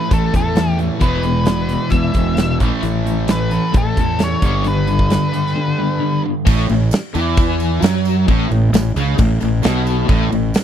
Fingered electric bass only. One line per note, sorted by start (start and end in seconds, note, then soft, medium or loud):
0.11 0.29 A1 loud
0.34 0.89 E2 medium
1.02 1.75 E1 loud
1.91 2.10 E2 loud
2.15 2.61 E1 medium
2.61 2.70 A1 medium
2.83 3.57 A1 medium
3.74 3.93 A1 loud
3.97 4.34 E2 medium
4.43 5.16 G1 medium
6.47 6.68 A1 medium
6.70 6.91 A1 medium
7.15 7.79 E2 medium
7.82 8.25 F#2 loud
8.28 8.49 A1 medium
8.51 8.72 A1 medium
8.72 8.94 A1 medium
8.96 9.17 C#2 loud
9.19 9.40 A1 medium
9.42 9.63 A1 medium
9.65 10.07 B1 loud
10.09 10.30 A1 medium
10.33 10.53 A1 medium